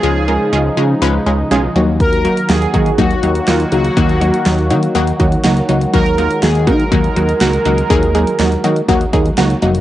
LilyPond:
<<
  \new Staff \with { instrumentName = "Analog polysynth" } { \time 4/4 \key dis \minor \tempo 4 = 122 gis'2~ gis'8 r4. | ais'4 gis'4 fis'4 eis'8 fis'8~ | fis'2~ fis'8 r4. | ais'4 gis'8 ais'2~ ais'8~ |
ais'2. r4 | }
  \new Staff \with { instrumentName = "Synth pluck" } { \time 4/4 \key dis \minor <gis cis' eis' gis'>8 <gis cis' eis' ais'>8 <gis cis' eis' gis'>8 <gis cis' eis' gis'>8 <gis cis' eis' b'>8 <gis cis' eis' gis'>8 <gis cis' eis' gis'>8 <fis ais dis' fis'>8~ | <fis ais dis' fis'>8 <fis ais dis' fis'>8 <fis ais dis' fis'>8 <fis ais dis' fis'>8 <fis ais dis' fis'>8 <fis ais dis' fis'>8 <fis ais dis' fis'>8 <fis ais dis' gis'>8 | <fis ais dis' fis'>8 <fis ais dis' fis'>8 <fis ais dis' fis'>8 <fis ais dis' fis'>8 <fis ais dis' fis'>8 <fis ais dis' fis'>8 <fis ais dis' fis'>8 <fis ais dis' fis'>8 | <fis ais dis' fis'>8 <fis ais dis' eis'>8 <fis ais dis' fis'>8 <fis ais dis' fis'>8 <fis ais dis' fis'>8 <fis ais dis' fis'>8 <fis ais dis' fis'>8 <fis ais dis' fis'>8 |
<fis ais dis' gis'>8 <fis ais dis' gis'>8 <fis ais dis' fis'>8 <fis ais dis' fis'>8 <fis ais dis' fis'>8 <fis ais dis' gis'>8 <fis ais dis' fis'>8 <fis ais dis' fis'>8 | }
  \new Staff \with { instrumentName = "Analog synth pad" } { \clef bass \time 4/4 \key dis \minor << { <cis eis gis dis'>2.~ <cis eis gis dis'>8 <dis fis fis'>8~ | <dis fis fis'>1~ | <dis fis fis'>1~ | <dis fis fis'>1~ |
<dis fis fis'>1 | } \\ { r2. r8 ais8~ | ais1~ | ais2.~ ais8 gis8~ | gis1~ |
gis1 | } >> }
  \new Staff \with { instrumentName = "Analog synth bass" } { \clef bass \time 4/4 \key dis \minor cis,4 cis,8 cis8 cis,8 cis,8 b,,8 dis,8~ | dis,4 dis,8 dis8 dis,8 dis,8 dis,8 cis,8 | dis,4 dis,8 dis8 dis,8 dis,8 cis,8 cis,8 | dis,4 dis,8 dis8 dis,8 dis,8 cis,8 cis,8 |
dis,4 dis,8 dis8 dis,8 dis,8 cis,8 eis,,8 | }
  \new DrumStaff \with { instrumentName = "Drums" } \drummode { \time 4/4 r4 r4 r4 r4 | <hh bd>16 hh16 hh16 hh16 <hh sn>16 hh16 <hh bd>16 hh16 <hh bd>16 hh16 hh16 hh16 <hh sn>16 hh16 hh16 hh16 | <hh bd>16 hh16 hh16 hh16 <hh sn>16 hh16 hh16 hh16 hh16 hh16 <hh bd>16 hh16 <hh sn>16 hh16 hh16 hh16 | <hh bd>16 hh16 hh16 hh16 <hh sn>16 hh16 <hh bd>16 hh16 <hh bd>16 hh16 hh16 hh16 <hh sn>16 hh16 hh16 hh16 |
<hh bd>16 hh16 hh16 hh16 <hh sn>16 hh16 hh16 hh16 <hh bd>16 hh16 <hh bd>16 hh16 <hh sn>16 hh16 hh16 hh16 | }
>>